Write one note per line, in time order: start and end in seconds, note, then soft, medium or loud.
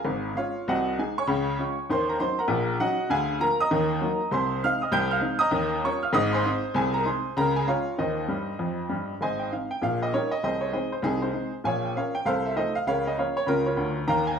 0.00 0.33 G#4 medium
0.00 0.33 F5 medium
0.00 0.36 G#5 medium
0.05 0.31 G#1 medium
0.05 0.31 G#2 medium
0.35 0.53 G#3 soft
0.35 0.53 C#4 soft
0.35 0.66 F4 medium
0.35 0.66 C#5 medium
0.35 0.67 F5 loud
0.68 0.93 C2 medium
0.68 0.93 C3 medium
0.68 0.97 F#4 medium
0.68 0.97 D#5 medium
0.68 0.98 F#5 loud
0.99 1.15 G#3 medium
0.99 1.15 D#4 medium
0.99 1.17 G#4 medium
0.99 1.17 G#5 medium
1.18 1.86 C#5 medium
1.18 1.86 G#5 medium
1.18 1.90 C#6 loud
1.27 1.54 C#2 medium
1.27 1.53 C#3 loud
1.59 1.75 G#3 medium
1.59 1.76 C#4 medium
1.59 1.76 F4 medium
1.90 2.15 D#2 medium
1.90 2.16 D#3 loud
1.90 2.08 C5 medium
1.90 2.09 C6 loud
2.09 2.20 A#4 medium
2.09 2.20 A#5 medium
2.19 2.36 F#3 soft
2.19 2.37 C#4 soft
2.19 2.37 D#4 medium
2.19 2.38 C5 medium
2.19 2.38 C6 loud
2.39 2.78 A#4 medium
2.39 2.78 F#5 medium
2.39 2.80 A#5 medium
2.48 2.75 A#1 loud
2.48 2.75 A#2 medium
2.80 2.96 F#3 soft
2.80 2.96 C#4 medium
2.80 2.97 D#4 medium
2.80 3.09 F#4 medium
2.80 3.09 D#5 medium
2.80 3.11 F#5 loud
3.10 3.36 D2 medium
3.10 3.36 D3 loud
3.10 3.39 G#4 medium
3.10 3.39 F5 medium
3.10 3.41 G#5 loud
3.40 3.57 F3 soft
3.40 3.57 A#3 medium
3.40 3.57 F4 medium
3.40 3.59 A#4 medium
3.40 3.60 A#5 loud
3.60 4.29 D#5 medium
3.60 4.29 A#5 medium
3.60 4.33 D#6 loud
3.71 3.97 D#2 loud
3.71 3.97 D#3 loud
4.01 4.18 F#3 medium
4.01 4.19 A#3 medium
4.01 4.20 D#4 medium
4.31 4.58 C2 medium
4.31 4.58 C3 loud
4.31 4.61 C5 medium
4.31 4.61 G#5 medium
4.31 4.63 C6 loud
4.64 4.80 G#3 medium
4.64 4.80 C4 medium
4.64 4.81 D#4 medium
4.64 4.82 F5 loud
4.64 4.82 F6 loud
4.82 4.93 D#5 medium
4.82 4.93 D#6 medium
4.92 5.18 C2 loud
4.92 5.18 C3 loud
4.92 5.11 G5 loud
4.92 5.12 G6 loud
5.11 5.41 F5 medium
5.11 5.42 F6 loud
5.21 5.38 G#3 medium
5.21 5.39 C4 medium
5.21 5.39 D#4 medium
5.39 5.81 D#5 loud
5.39 5.80 A#5 loud
5.39 5.83 D#6 loud
5.51 5.78 D#2 loud
5.51 5.79 D#3 loud
5.84 6.01 G3 soft
5.84 6.01 C#4 soft
5.84 6.01 F4 medium
5.84 6.03 C#5 medium
5.84 6.04 C#6 medium
6.03 6.15 F5 medium
6.03 6.15 F6 medium
6.13 6.40 G#1 loud
6.13 6.40 G#2 loud
6.13 6.33 D#5 loud
6.13 6.34 D#6 loud
6.33 6.73 C5 loud
6.33 6.73 G#5 medium
6.33 6.75 C6 loud
6.45 6.62 G#3 medium
6.45 6.62 C4 medium
6.45 6.63 D#4 medium
6.74 7.01 C2 loud
6.74 7.01 C3 medium
6.74 6.94 G#4 loud
6.74 6.95 G#5 loud
6.94 7.06 A#4 medium
6.94 7.06 A#5 loud
7.05 7.22 G#3 medium
7.05 7.22 C4 medium
7.05 7.23 D#4 soft
7.05 7.35 C5 medium
7.05 7.35 G#5 medium
7.05 7.36 C6 medium
7.37 7.63 C#2 medium
7.37 7.63 C#3 loud
7.37 7.55 A#4 medium
7.37 7.56 A#5 loud
7.56 7.67 G#4 medium
7.56 7.68 G#5 loud
7.67 7.84 G#3 medium
7.67 7.84 C#4 medium
7.67 7.96 F4 medium
7.67 7.97 C#5 medium
7.67 7.98 F5 loud
7.98 8.24 D#2 medium
7.98 8.24 D#3 medium
7.98 9.05 D#4 medium
7.98 9.05 C5 medium
7.98 9.09 D#5 medium
8.28 8.51 G2 medium
8.28 8.51 G3 medium
8.59 8.82 F2 medium
8.59 8.82 F3 medium
8.89 9.12 G2 medium
8.89 9.12 G3 medium
9.21 9.46 G#1 medium
9.21 9.46 G#2 medium
9.21 9.39 C5 medium
9.21 9.39 D#5 medium
9.21 9.40 G#5 loud
9.39 9.51 G5 medium
9.52 9.68 G#3 soft
9.52 9.69 C4 soft
9.52 9.69 D#4 soft
9.52 9.70 F5 medium
9.71 9.82 G5 medium
9.82 10.07 A#1 medium
9.82 10.08 A#2 medium
9.82 10.01 F5 loud
10.03 10.13 D#5 medium
10.13 10.29 G3 soft
10.13 10.30 C#4 soft
10.13 10.31 D#4 medium
10.13 10.31 G4 medium
10.13 10.31 A#4 medium
10.13 10.32 C#5 loud
10.31 10.42 D#5 medium
10.43 10.69 C2 medium
10.43 10.69 C3 medium
10.43 10.61 G#4 medium
10.43 10.61 C5 medium
10.43 10.62 D#5 loud
10.61 10.73 C#5 medium
10.73 10.89 G#3 soft
10.73 10.90 C4 soft
10.73 10.90 D#4 soft
10.73 10.92 G#4 medium
10.73 10.91 C5 medium
10.73 10.92 D#5 medium
10.92 11.04 C5 medium
11.02 11.29 C2 medium
11.02 11.29 C3 medium
11.02 11.21 C4 medium
11.02 11.21 D#4 medium
11.02 11.22 G#4 loud
11.22 11.32 D#4 medium
11.22 11.52 G#4 medium
11.22 11.53 C5 medium
11.33 11.50 G#3 medium
11.33 11.51 C4 soft
11.33 11.51 D#4 soft
11.64 11.91 A#1 medium
11.64 11.90 A#2 medium
11.64 11.83 C#5 medium
11.64 11.83 F5 medium
11.64 11.84 G#5 loud
11.85 11.96 G5 medium
11.96 12.12 F3 soft
11.96 12.12 C#4 medium
11.96 12.14 A#4 medium
11.96 12.14 C#5 medium
11.96 12.15 F5 loud
12.15 12.26 G5 medium
12.25 12.52 C2 medium
12.25 12.51 C3 medium
12.25 12.44 A4 medium
12.25 12.44 C5 medium
12.25 12.45 F5 loud
12.45 12.57 E5 medium
12.56 12.73 F3 soft
12.56 12.73 A3 soft
12.56 12.74 D#4 medium
12.56 12.75 A4 medium
12.56 12.75 C5 medium
12.56 12.75 D#5 medium
12.75 12.86 F5 loud
12.87 13.13 C#2 medium
12.87 13.13 C#3 medium
12.87 13.06 A#4 medium
12.87 13.05 C#5 medium
12.87 13.06 F5 loud
13.07 13.18 D#5 medium
13.18 13.34 F3 soft
13.18 13.35 A#3 soft
13.18 13.35 C#4 soft
13.18 13.36 A#4 medium
13.18 13.35 C#5 medium
13.18 13.37 F5 medium
13.37 13.48 C#5 loud
13.46 13.73 C#2 medium
13.46 13.73 C#3 medium
13.46 13.66 C#4 medium
13.46 13.66 F4 medium
13.46 13.66 A#4 loud
13.66 13.96 F4 medium
13.66 13.96 A#4 medium
13.66 13.97 C#5 medium
13.77 14.02 D2 medium
13.77 14.02 D3 medium
14.07 14.34 D#2 medium
14.07 14.34 D#3 medium
14.07 14.27 F5 loud
14.07 14.27 G5 medium
14.07 14.27 A#5 loud
14.27 14.39 G#5 loud